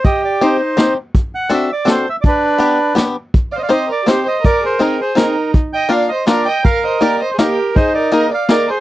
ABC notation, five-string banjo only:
X:1
M:3/4
L:1/8
Q:1/4=164
K:Cm
V:1 name="Five-string banjo"
z2 [CEGc] z [CEGc] z | z2 [CD^F=A] z [CDFA] z | z2 [=B,DG=B] z [B,DGB] z | z2 [CEGc] z [CEGc] z |
z2 [CEAB] z [CEAB] z | z2 [B,DFB] z [B,DFB] z | z2 [B,EGB] z [B,EGB] z | z2 [B,EAB] z [B,EAB] z |]